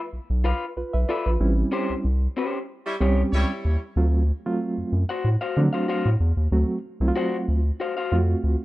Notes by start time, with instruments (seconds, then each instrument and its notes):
0.13 analog synth bass B1
0.30 analog synth bass B1
0.44 clean electric guitar F4 B4 F5
0.77 analog synth bass B1, reed electric piano F4 B4
0.93 analog synth bass B1, reed electric piano B4 E5
1.08 clean electric guitar F4 B4 E5, reed electric piano A4 D5
1.26 analog synth bass A#1, reed electric piano F4 B4
1.40 analog synth bass A1, reed electric piano G3 C4 C#4 E4
1.72 clean electric guitar C#4 G4 C5
1.90 analog synth bass C2
2.04 analog synth bass C2
2.37 clean electric guitar C#4 G4 C5
2.86 horn section G3 E4 C#5
3.00 analog synth bass C2, reed electric piano G3 C4 C#4 G4, clean electric guitar C#4 G4 C#5
3.33 analog synth bass C#2, horn section G3 E4 C#5
3.65 analog synth bass D#2
3.96 analog synth bass D2, reed electric piano F#3 A3 C4 F4
4.46 reed electric piano F#3 A3 C4 F4
4.78 analog synth bass F#2
4.92 analog synth bass F#2
5.09 clean electric guitar F#4 C5 F#5
5.25 analog synth bass A2
5.41 clean electric guitar F#4 C5 F5
5.57 analog synth bass D3, reed electric piano F3 A3 C4 D4
5.63 reed electric piano F#3
5.73 clean electric guitar F#4 C5 F5
5.88 clean electric guitar F#4 C5 F5
6.05 analog synth bass A2
6.20 analog synth bass E2
6.37 analog synth bass D#2
6.52 analog synth bass D2, reed electric piano F#3 A3 C4 F#4
7.00 analog synth bass C2, reed electric piano F#3 A3 C4 E4
7.08 reed electric piano F4
7.16 clean electric guitar F#4 C5 F#5
7.48 analog synth bass D2
7.80 clean electric guitar F#4 C5 F5
7.97 clean electric guitar F#4 C5 F5
8.12 analog synth bass F2, reed electric piano F3 A3 C4 F4
8.19 reed electric piano F#4
8.44 analog synth bass D2